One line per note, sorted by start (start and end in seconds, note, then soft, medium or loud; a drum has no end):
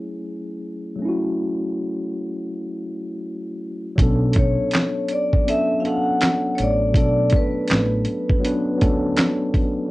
0.00 0.95 F#3 medium
0.00 0.97 A3 medium
0.00 0.98 C#4 medium
0.00 1.00 E4 medium
0.00 1.01 G#4 medium
0.96 3.91 F#3 medium
0.96 3.93 A3 medium
1.02 3.94 C#4 medium
1.02 3.96 E4 medium
1.09 3.98 F#4 medium
3.96 4.54 B1 loud
3.96 5.16 F#3 medium
3.96 5.17 B3 medium
3.96 5.18 C#4 medium
3.96 kick loud
3.96 closed hi-hat loud
4.00 5.19 D4 medium
4.00 5.20 A4 medium
4.33 kick loud
4.33 closed hi-hat medium
4.39 5.13 C#5 medium
4.71 snare loud
4.71 clap medium
4.71 closed hi-hat medium
5.09 5.45 D5 loud
5.09 closed hi-hat medium
5.33 kick medium
5.44 5.76 F#3 medium
5.44 5.77 B3 medium
5.44 5.78 C#4 medium
5.48 5.78 D4 medium
5.48 5.79 A4 medium
5.48 5.80 E5 loud
5.48 closed hi-hat medium
5.80 6.73 F#3 medium
5.80 6.74 B3 medium
5.80 6.75 C#4 medium
5.80 5.85 F5 medium
5.85 6.76 D4 medium
5.85 6.77 A4 medium
5.85 6.56 F#5 loud
5.85 closed hi-hat medium
6.21 snare loud
6.21 clap loud
6.21 closed hi-hat medium
6.55 6.59 C#5 medium
6.55 closed hi-hat medium
6.59 6.95 A1 medium
6.59 6.97 D5 medium
6.91 7.29 B1 loud
6.91 8.12 F#3 medium
6.91 8.14 A3 medium
6.91 8.13 B3 medium
6.91 kick loud
6.96 8.15 D4 medium
6.96 8.16 A4 medium
6.96 7.35 D5 medium
6.96 closed hi-hat medium
7.30 kick loud
7.30 closed hi-hat medium
7.36 8.78 B4 medium
7.68 8.04 A1 medium
7.68 snare loud
7.68 clap medium
7.68 closed hi-hat medium
8.05 closed hi-hat medium
8.29 kick medium
8.40 8.72 F#3 medium
8.40 8.73 B3 medium
8.40 8.74 C#4 medium
8.44 8.75 D4 medium
8.44 8.75 B4 loud
8.44 closed hi-hat medium
8.76 9.70 F#3 medium
8.76 9.70 B3 medium
8.76 9.71 C#4 medium
8.81 9.15 D2 medium
8.81 9.72 D4 medium
8.81 9.73 A4 medium
8.81 kick medium
8.81 closed hi-hat medium
9.16 snare loud
9.16 clap loud
9.16 closed hi-hat medium
9.54 kick medium
9.54 closed hi-hat medium